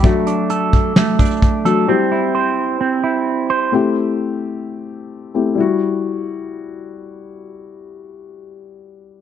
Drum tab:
HH |x---x---x---x-------xxxxx---x---|--------------------------------|--------------------------------|--------------------------------|
SD |----------------o---------------|--------------------------------|--------------------------------|--------------------------------|
BD |o-----------o-------o---o-------|--------------------------------|--------------------------------|--------------------------------|

HH |--------------------------------|
SD |--------------------------------|
BD |--------------------------------|